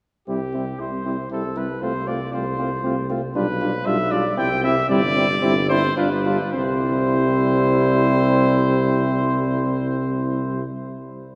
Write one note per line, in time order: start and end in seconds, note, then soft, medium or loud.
0.28 0.73 C2 soft
0.28 0.40 G3 soft
0.28 0.39 C4 soft
0.28 0.40 E4 soft
0.28 0.81 G4 medium
0.53 0.66 G3 soft
0.53 0.65 C4 soft
0.53 0.65 E4 soft
0.79 1.25 C2 soft
0.79 0.91 G3 soft
0.79 0.91 C4 soft
0.79 0.91 E4 soft
0.79 1.31 C5 medium
1.05 1.17 G3 soft
1.05 1.17 C4 soft
1.05 1.16 E4 soft
1.30 1.76 C2 soft
1.30 1.43 G3 soft
1.30 1.43 C4 soft
1.30 1.42 E4 soft
1.30 1.59 A4 medium
1.56 1.68 G3 soft
1.56 1.68 C4 soft
1.56 1.67 E4 soft
1.56 1.84 B4 medium
1.82 2.27 C2 soft
1.82 1.94 A3 soft
1.82 1.94 C4 soft
1.82 1.93 F4 soft
1.82 2.09 C5 medium
2.07 2.20 A3 soft
2.07 2.19 C4 soft
2.07 2.19 F4 soft
2.07 2.33 D5 medium
2.33 2.78 C2 medium
2.33 2.45 A3 soft
2.33 2.45 C4 soft
2.33 2.45 F4 soft
2.33 3.08 C5 medium
2.58 2.71 A3 soft
2.58 2.70 C4 soft
2.58 2.70 F4 soft
2.84 3.29 C2 medium
2.84 2.96 A3 soft
2.84 2.96 C4 soft
2.84 2.96 F4 soft
3.09 3.21 A3 soft
3.09 3.21 C4 medium
3.09 3.21 F4 soft
3.35 3.80 B1 medium
3.35 3.47 G3 medium
3.35 3.47 D4 medium
3.35 3.46 F4 soft
3.35 3.87 B4 medium
3.60 3.72 G3 medium
3.60 3.72 D4 medium
3.60 3.72 F4 soft
3.86 4.31 B1 medium
3.86 3.98 G3 medium
3.86 3.97 D4 medium
3.86 3.98 F4 medium
3.86 4.13 E5 medium
4.11 4.24 G3 medium
4.11 4.23 D4 medium
4.11 4.23 F4 medium
4.11 4.37 D5 medium
4.37 4.83 C2 medium
4.37 4.50 G3 medium
4.37 4.49 C4 medium
4.37 4.49 E4 medium
4.37 4.63 G5 medium
4.63 4.76 G3 medium
4.63 4.75 C4 medium
4.63 4.75 E4 medium
4.63 4.89 E5 medium
4.89 5.36 G1 medium
4.89 5.02 G3 medium
4.89 5.01 C4 medium
4.89 5.02 E4 medium
4.89 5.68 D5 loud
5.15 5.28 G3 medium
5.15 5.27 C4 medium
5.15 5.28 E4 medium
5.42 5.90 G1 medium
5.42 5.55 G3 medium
5.42 5.54 C4 medium
5.42 5.55 E4 medium
5.69 5.82 G3 medium
5.69 5.82 C4 medium
5.69 5.82 E4 medium
5.69 5.96 C5 loud
5.97 6.38 G1 medium
5.97 6.11 G3 medium
5.97 6.09 D4 medium
5.97 6.09 F4 medium
5.97 6.52 B4 medium
6.25 6.39 G3 medium
6.25 6.38 D4 medium
6.25 6.38 F4 medium
6.53 10.63 C2 medium
6.53 10.63 G3 medium
6.53 10.63 C4 medium
6.53 10.63 E4 medium
6.53 10.63 C5 medium